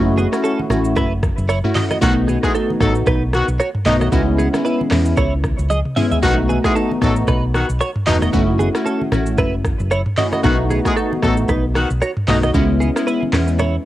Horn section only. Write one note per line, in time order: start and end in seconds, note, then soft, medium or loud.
2.02 2.14 D#3 loud
2.02 2.14 B3 loud
2.02 2.14 F#4 loud
2.43 2.52 G#3 medium
2.43 2.52 E4 medium
2.43 2.52 G#4 loud
2.80 2.93 F#3 medium
2.80 2.93 D#4 medium
2.80 2.93 A4 medium
3.33 3.46 D#3 medium
3.33 3.46 B3 medium
3.33 3.46 F#4 loud
3.86 3.95 B2 medium
3.86 3.95 A3 medium
3.86 3.95 D#4 loud
6.23 6.35 D#3 loud
6.23 6.35 B3 loud
6.23 6.35 F#4 loud
6.64 6.73 G#3 medium
6.64 6.73 E4 medium
6.64 6.73 G#4 loud
7.02 7.14 F#3 medium
7.02 7.14 D#4 medium
7.02 7.14 A4 medium
7.54 7.66 D#3 medium
7.54 7.67 B3 medium
7.54 7.66 F#4 medium
8.07 8.16 B2 medium
8.07 8.16 A3 medium
8.07 8.16 D#4 loud
10.43 10.56 D#3 loud
10.43 10.56 B3 loud
10.43 10.56 F#4 loud
10.85 10.94 G#3 medium
10.85 10.94 E4 medium
10.85 10.94 G#4 loud
11.22 11.35 F#3 medium
11.22 11.35 D#4 medium
11.22 11.35 A4 loud
11.75 11.87 D#3 medium
11.75 11.87 B3 medium
11.75 11.87 F#4 loud
12.28 12.37 B2 medium
12.28 12.37 A3 medium
12.28 12.37 D#4 loud